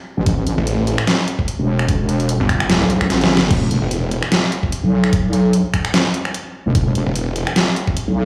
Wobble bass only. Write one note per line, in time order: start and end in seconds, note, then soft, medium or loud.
0.17 0.25 A1 medium
0.26 0.56 A1 loud
1.59 2.38 E1 loud
2.81 2.99 B1 medium
3.01 3.09 B1 loud
3.10 3.49 A1 loud
3.51 3.80 E1 loud
4.83 5.63 B1 loud
6.66 6.74 E1 loud
6.75 7.05 E1 loud
8.08 8.25 B1 loud